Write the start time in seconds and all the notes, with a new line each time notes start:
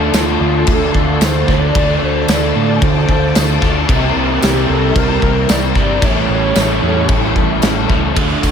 Already playing: D3 A3 D4 F4 A4 D5 A5 C6
0.13 D2 A3 D4 F4 A4, snare, tambourine, crash
0.41 D2 D4 F4 A4
0.67 D2, kick, crash
0.72 A4
0.94 D2 D4 F4 A4, kick
1.21 D2 A3 D4 F4, snare, tambourine, crash
1.25 A4 C5
1.48 D2 D3 A3 D4 D5, kick, snare
1.75 D2 D3 A3 D4 F4 A4 D6, kick, crash
2.02 D2 D4 F4 A4 C5
2.28 D2 A3 D4 F4 D5, snare, tambourine, crash
2.33 A4
2.56 A2 D4 F4 A4
2.82 D2 C5, kick, crash
3.09 D2 D4 F4 A4, kick
3.35 D2 A3 D4 F4 A4, snare, tambourine, crash
3.62 D2 D3 A3 D4, kick, snare
3.88 C2 C3 E3 G3 A#3 C4 G4 A#4 G5 C6, kick, crash
3.93 E4 A#4
4.15 C2 C4 E4 A#4
4.20 G3
4.42 C2 G3 C4 G4, snare, tambourine, crash
4.46 E4 A#4
4.67 C2 A4 A#4
4.71 G3 C4 E4
4.95 C2 A#4, kick, crash
5.22 C2 G3 C4 E4 A#4, kick
5.49 C2 G3 C4 E4 A#4 D5, snare, tambourine, crash
5.75 G1 C3 G3 C4, kick, snare
6.02 A1 A2 E3 G3 A3 C#4 G4 A4 C#5 E5 C#6, kick, crash
6.06 E4 A4
6.29 A1 C#4 E4 A4
6.34 G3
6.55 A1 G3 C#4, snare, tambourine, crash
6.59 E4 A4
6.82 E2 C#4 E4 A4
6.87 G3
7.09 A1, kick, crash
7.36 A1 E4 A4, kick
7.40 G3 C#4
7.62 A1 G3 C#4 E4, snare, tambourine, crash
7.66 A4
7.89 C#2 A2 E3 A3, kick
8.16 D2 D3 A3 D4 A4 D5 A5 C6, kick, ride
8.20 D4 F4
8.30 tambourine
8.43 D2, kick, ride, tambourine